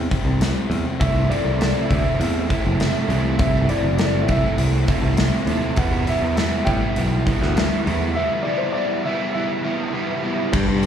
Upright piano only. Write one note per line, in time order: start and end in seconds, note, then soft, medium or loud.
0.00 0.67 G5 medium
1.00 1.28 E5 medium
1.30 1.58 D5 medium
1.59 1.90 D5 medium
1.89 2.75 E5 medium
3.38 3.69 E5 medium
3.69 3.96 D5 medium
3.97 4.29 D5 medium
4.30 5.14 E5 medium
5.78 6.08 F#5 medium
6.07 6.34 E5 medium
6.36 6.67 E5 medium
6.65 7.51 G5 medium
8.14 8.46 E5 medium
8.43 8.59 D5 medium
8.58 8.74 C5 medium
8.72 9.04 D5 medium
9.04 9.31 E5 medium
9.33 9.89 E5 medium